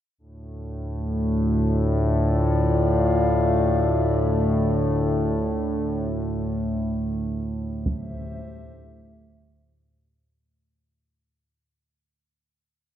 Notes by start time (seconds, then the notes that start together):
0.18 D2 A2 A3
1.33 D5
1.43 F4
2.49 F5
5.30 D3
7.59 G4 C5 E5
7.86 taiko